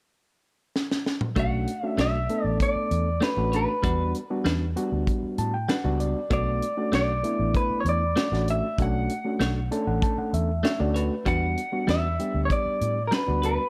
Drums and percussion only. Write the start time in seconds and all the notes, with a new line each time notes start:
0.76 snare
0.91 snare
1.06 snare
1.21 mid tom
1.36 kick, closed hi-hat
1.67 closed hi-hat
1.98 snare, closed hi-hat
2.29 closed hi-hat
2.60 kick, closed hi-hat
2.91 closed hi-hat
3.22 snare, closed hi-hat
3.53 closed hi-hat
3.84 kick, closed hi-hat
4.14 closed hi-hat
4.46 snare, closed hi-hat
4.77 closed hi-hat
5.07 kick, closed hi-hat
5.38 closed hi-hat
5.69 snare, closed hi-hat
6.00 closed hi-hat
6.31 kick, closed hi-hat
6.62 closed hi-hat
6.93 snare, closed hi-hat
7.24 closed hi-hat
7.55 kick, closed hi-hat
7.85 closed hi-hat
8.17 snare, closed hi-hat
8.34 snare
8.48 closed hi-hat
8.78 kick, closed hi-hat
9.09 closed hi-hat
9.40 snare, closed hi-hat
9.72 closed hi-hat
10.02 kick, closed hi-hat
10.34 closed hi-hat
10.64 snare, closed hi-hat
10.96 closed hi-hat
11.26 kick, closed hi-hat
11.57 closed hi-hat
11.88 snare, closed hi-hat
12.19 closed hi-hat
12.50 kick, closed hi-hat
12.81 closed hi-hat
13.12 snare, closed hi-hat
13.43 closed hi-hat